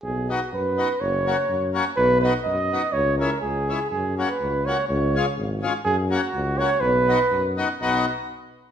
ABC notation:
X:1
M:2/4
L:1/16
Q:"Swing" 1/4=124
K:B
V:1 name="Flugelhorn"
G2 F2 B4 | c6 z2 | B2 B2 d4 | c2 A2 G4 |
G2 F B3 c2 | c4 z4 | G2 F4 c2 | B6 z2 |
d2 z6 |]
V:2 name="Accordion"
z2 [B,DF]2 z2 [B,DF]2 | z2 [A,CF]2 z2 [A,CF]2 | z2 [B,DF]2 z2 [B,DF]2 | z2 [G,CE]2 z2 [G,CE]2 |
z2 [A,CF]2 z2 [A,CF]2 | z2 [G,C^E]2 z2 [G,CE]2 | z2 [A,CF]2 z2 [A,CF]2 | z2 [B,DF]2 z2 [B,DF]2 |
[B,DF]2 z6 |]
V:3 name="Tuba" clef=bass
B,,,4 F,,4 | F,,,4 F,,4 | B,,,4 F,,4 | C,,4 C,,4 |
F,,4 C,,4 | C,,4 G,,,4 | F,,4 C,,4 | B,,,4 F,,4 |
B,,,2 z6 |]